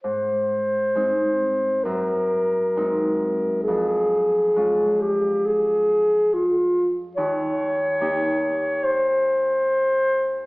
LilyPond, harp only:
\new Staff \with { instrumentName = "Harp" } { \time 4/4 \key aes \major \tempo 4 = 68 aes,4 <aes c' ees'>4 ges,4 <aes c' ees'>4 | f,4 <aes des' f'>2. | ees,4 <bes ees' g'>2. | }